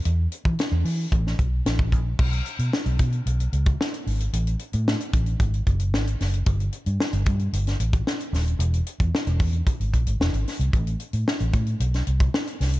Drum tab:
CC |----------------|x---------------|----------------|----------------|
HH |x-x-x-o-x-x-x-x-|-xxx-xxxxxxx-xox|xxxx-xxxxxxx-xox|xxxx-xxxxxxx-xox|
SD |----o----o--o---|----o-------o---|----o-------o-o-|----o----o--o-o-|
BD |---o----o-o--oo-|o-----o----o----|------o-o-o-----|o-----o----o----|

CC |----------------|----------------|
HH |xxxx-xoxxxxx-xox|xxxx-xxxxxxx-xox|
SD |----o-------o-o-|----o----o--o-o-|
BD |---o--o-o-o-----|o-----o----o----|